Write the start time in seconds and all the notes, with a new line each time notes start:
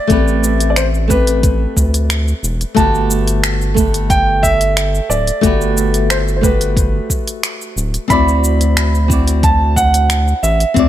Already playing: D5
0.07 A1 A3 C4 G4, kick, closed hi-hat, shaker
0.12 B4
0.28 shaker
0.44 shaker
0.60 closed hi-hat, shaker
0.70 D5
0.76 C5, finger snap, closed hi-hat, shaker
0.94 shaker
1.08 A3 C4 G4 B4, kick, shaker
1.12 B4
1.27 closed hi-hat, shaker
1.43 kick, closed hi-hat, shaker
1.77 D2, kick, shaker
1.94 closed hi-hat, shaker
2.10 finger snap, closed hi-hat, shaker
2.28 shaker
2.43 E1, shaker
2.61 closed hi-hat, shaker
2.75 G1 A3 F#4 G4 A5, kick, closed hi-hat, shaker
2.79 B4
2.95 shaker
3.11 shaker
3.28 closed hi-hat, shaker
3.44 finger snap, closed hi-hat, shaker
3.62 shaker
3.74 A3 G4 A4, kick, shaker
3.79 B4
3.94 closed hi-hat, shaker
4.10 G5, kick, closed hi-hat, shaker
4.43 E5, kick, shaker
4.61 closed hi-hat, shaker
4.77 finger snap, closed hi-hat, shaker
4.95 shaker
5.10 D1 D5, shaker
5.27 closed hi-hat, shaker
5.41 G1 A3 F#4 G4, kick, closed hi-hat, shaker
5.46 B4
5.61 shaker
5.77 shaker
5.94 closed hi-hat, shaker
6.10 C5, finger snap, closed hi-hat, shaker
6.28 shaker
6.36 C5
6.41 A3 F#4 G4 B4, kick, shaker
6.46 B4
6.61 closed hi-hat, shaker
6.77 kick, closed hi-hat, shaker
7.10 kick, shaker
7.28 closed hi-hat, shaker
7.43 finger snap, closed hi-hat, shaker
7.61 shaker
7.76 D1, shaker
7.94 closed hi-hat, shaker
8.08 D2 C4 E4 F#4 B5, kick, closed hi-hat, shaker
8.12 D5
8.28 shaker
8.44 shaker
8.61 closed hi-hat, shaker
8.77 finger snap, closed hi-hat, shaker
8.95 shaker
9.08 C4 E4 F#4, kick, shaker
9.13 D5
9.28 closed hi-hat, shaker
9.43 A5, kick, closed hi-hat, shaker
9.76 F#5, kick, shaker
9.94 closed hi-hat, shaker
10.10 finger snap, closed hi-hat, shaker
10.28 shaker
10.43 A1 E5, shaker
10.60 closed hi-hat, shaker
10.74 D2 C4 E4 F#4, kick, closed hi-hat, shaker
10.79 D5